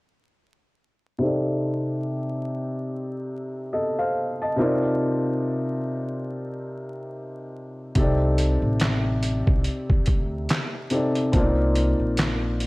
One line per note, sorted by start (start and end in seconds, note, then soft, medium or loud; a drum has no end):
1.18 4.11 C3 medium
1.18 4.11 C4 medium
1.18 4.12 D#4 medium
1.18 4.12 G4 medium
1.23 3.71 A4 medium
1.23 3.71 D5 medium
3.73 3.96 A4 medium
3.73 3.96 D#5 medium
3.99 4.38 C5 medium
3.99 4.38 F5 medium
4.42 4.81 D#5 medium
4.42 4.81 A5 medium
4.56 7.91 C3 medium
4.56 7.92 C4 medium
4.56 7.92 D#4 medium
4.56 7.93 F4 medium
4.60 7.93 A#4 medium
4.60 7.93 D5 medium
7.95 8.58 C2 medium
7.95 10.87 C3 medium
7.95 10.87 C4 medium
7.95 10.88 D#4 medium
7.95 10.88 G4 medium
7.95 kick loud
7.95 closed hi-hat medium
7.99 10.89 A4 medium
7.99 10.90 D5 medium
8.38 closed hi-hat medium
8.62 9.42 A1 medium
8.80 snare loud
8.80 clap medium
8.80 closed hi-hat medium
9.23 closed hi-hat medium
9.47 9.63 C2 medium
9.47 kick medium
9.64 closed hi-hat medium
9.90 kick medium
10.06 10.46 D2 medium
10.06 kick medium
10.06 closed hi-hat medium
10.49 snare loud
10.49 clap medium
10.49 closed hi-hat medium
10.90 11.33 C3 soft
10.90 11.31 C4 soft
10.90 11.34 D#4 soft
10.90 11.34 G4 soft
10.90 11.34 A4 medium
10.90 11.34 D5 medium
10.90 closed hi-hat medium
11.15 closed hi-hat soft
11.32 11.96 C2 loud
11.32 12.67 A#3 medium
11.32 12.67 C4 medium
11.32 11.42 D4 medium
11.32 kick loud
11.32 closed hi-hat medium
11.37 12.67 F4 medium
11.37 12.67 D5 medium
11.42 12.67 D#4 medium
11.75 closed hi-hat medium
11.99 12.67 A#1 medium
12.17 snare loud
12.17 clap medium
12.17 closed hi-hat medium
12.60 closed hi-hat medium